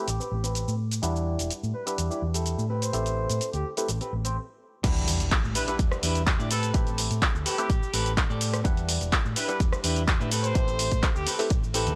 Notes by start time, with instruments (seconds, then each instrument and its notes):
Already playing: trumpet section G4
0.07 fingered electric bass A1, muted clean electric guitar stroke, closed hi-hat, shaker
0.20 clean electric guitar C4 G4 B4, shaker
0.32 fingered electric bass A1
0.43 clean electric guitar C4 G4 B4, closed hi-hat, shaker
0.55 closed hi-hat, shaker
0.68 fingered electric bass A2, shaker
0.91 closed hi-hat, shaker
1.02 fingered electric bass E2, clav G3 D4 E4 B4 F#5, clean electric guitar E4 G4 D5, closed hi-hat, shaker
1.16 shaker
1.39 fingered electric bass E1, closed hi-hat, shaker
1.50 closed hi-hat, shaker
1.63 fingered electric bass A2, shaker
1.74 trumpet section B4
1.86 clav G3 D4 E4 B4 F#5, trumpet section B4, closed hi-hat, shaker
1.98 fingered electric bass E2, muted clean electric guitar stroke, closed hi-hat, shaker
2.10 clean electric guitar E4 G4 D5, shaker
2.22 fingered electric bass E2
2.34 clean electric guitar E4 G4 A4, closed hi-hat, shaker
2.46 closed hi-hat, shaker
2.58 fingered electric bass A2, shaker
2.69 clean electric guitar C4 G4 B4
2.82 trumpet section C5, closed hi-hat, shaker
2.93 fingered electric bass A1, clav A3 C4 E4 G4 A4, closed hi-hat, shaker
3.06 closed hi-hat, shaker
3.30 fingered electric bass A2, closed hi-hat, shaker
3.41 closed hi-hat, shaker
3.53 fingered electric bass D2, trumpet section G4, closed hi-hat, shaker
3.77 clav A3 C4 E4 G4 B4, closed hi-hat, shaker
3.88 fingered electric bass A1, muted clean electric guitar stroke, closed hi-hat, shaker
4.01 clean electric guitar C4 G4 B4, closed hi-hat, shaker
4.13 fingered electric bass A1
4.25 clean electric guitar C4 G4 C5, closed hi-hat, shaker
4.83 fingered electric bass E2, clav G3 D4 E4 B4 F#5, kick, closed hi-hat, crash, impact, shaker
4.96 closed hi-hat, shaker
5.07 muted clean electric guitar stroke, open hi-hat, ride, shaker
5.20 fingered electric bass E1, muted clean electric guitar stroke, closed hi-hat, shaker
5.32 kick, clap, closed hi-hat, shaker
5.44 fingered electric bass A2, shaker
5.55 clean electric guitar D4 E4 G4 B4, trumpet section B4, open hi-hat, ride, shaker
5.67 clav G3 D4 E4 B4 F#5, trumpet section B4, closed hi-hat, shaker
5.79 fingered electric bass E2, kick, closed hi-hat, shaker
5.92 cross-stick, shaker
6.03 fingered electric bass E2, clean electric guitar D4 E4 G4 B4, open hi-hat, ride, shaker
6.15 closed hi-hat, shaker
6.27 kick, clap, closed hi-hat, shaker
6.39 fingered electric bass A2, clean electric guitar D4 E4 G4 D5, shaker
6.50 clean electric guitar C4 G4 A4 B4, trumpet section A4, open hi-hat, ride, shaker
6.63 closed hi-hat, shaker
6.74 fingered electric bass A1, clav A3 C4 E4 G4 B4, kick, closed hi-hat, shaker
6.87 closed hi-hat, shaker
6.98 muted clean electric guitar stroke, open hi-hat, ride, shaker
7.10 fingered electric bass A2, muted clean electric guitar stroke, closed hi-hat, shaker
7.22 kick, clap, closed hi-hat, shaker
7.35 fingered electric bass D2, shaker
7.46 clean electric guitar C4 G4 A4 B4, trumpet section G4, open hi-hat, ride, shaker
7.58 clav A3 C4 E4 G4 B4, closed hi-hat, shaker
7.70 fingered electric bass A1, kick, closed hi-hat, shaker
7.83 shaker
7.93 fingered electric bass A1, clean electric guitar C4 G4 A4 B4, open hi-hat, ride, shaker
8.06 closed hi-hat, shaker
8.17 kick, clap, closed hi-hat, shaker
8.30 fingered electric bass A2, clean electric guitar C4 G4 A4 D5, shaker
8.41 open hi-hat, ride, shaker
8.54 cross-stick, closed hi-hat, shaker
8.64 fingered electric bass E2, clav G3 D4 E4 B4 F#5, kick, closed hi-hat, shaker
8.77 closed hi-hat, shaker
8.88 muted clean electric guitar stroke, open hi-hat, ride, shaker
9.01 fingered electric bass E1, muted clean electric guitar stroke, closed hi-hat, shaker
9.12 kick, clap, closed hi-hat, shaker
9.25 fingered electric bass A2, shaker
9.36 clean electric guitar D4 E4 G4 B4, trumpet section B4, open hi-hat, ride, shaker
9.48 clav G3 D4 E4 B4 F#5, trumpet section B4, closed hi-hat, shaker
9.60 fingered electric bass E2, kick, closed hi-hat, shaker
9.73 cross-stick, shaker
9.84 fingered electric bass E2, clean electric guitar D4 E4 G4 B4, open hi-hat, ride, shaker
9.96 closed hi-hat, shaker
10.08 kick, clap, closed hi-hat, shaker
10.20 fingered electric bass A2, clean electric guitar D4 E4 G4 B4, shaker
10.31 clean electric guitar C4 G4 A4 B4, open hi-hat, ride, shaker
10.44 trumpet section C5, closed hi-hat, shaker
10.55 fingered electric bass A1, clav A3 C4 E4 G4 C5, kick, closed hi-hat, shaker
10.68 closed hi-hat, shaker
10.79 muted clean electric guitar stroke, open hi-hat, ride, shaker
10.91 fingered electric bass A2, muted clean electric guitar stroke, kick, closed hi-hat, shaker
11.03 kick, clap, closed hi-hat, shaker
11.15 fingered electric bass D2, trumpet section G4, shaker
11.27 clean electric guitar C4 G4 A4 B4, open hi-hat, ride, shaker
11.39 clav A3 C4 E4 G4 B4, open hi-hat, shaker
11.50 fingered electric bass A1, kick, closed hi-hat, shaker
11.64 shaker
11.74 clav A3 C4 E4 G4, clean electric guitar C4 G4 A4 B4, open hi-hat, ride, shaker
11.87 fingered electric bass E2, closed hi-hat, shaker